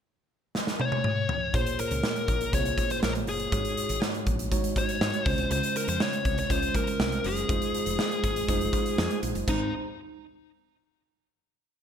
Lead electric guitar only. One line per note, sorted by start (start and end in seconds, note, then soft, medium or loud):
0.81 1.55 C#5 loud
1.55 1.80 C5 medium
1.80 2.50 A#4 medium
2.54 2.91 C#5 medium
2.91 2.96 C5 medium
3.04 3.11 A#4 medium
3.29 3.99 G#4 medium
4.78 5.26 C#5 loud
5.26 5.48 C5 loud
5.52 5.75 C5 medium
5.77 5.88 A#4 medium
5.89 6.01 C5 loud
6.02 6.38 C#5 medium
6.39 6.52 C#5 loud
6.52 6.76 C5 medium
6.76 7.27 A#4 medium
7.26 9.20 G#4 medium
9.49 9.71 D#4 medium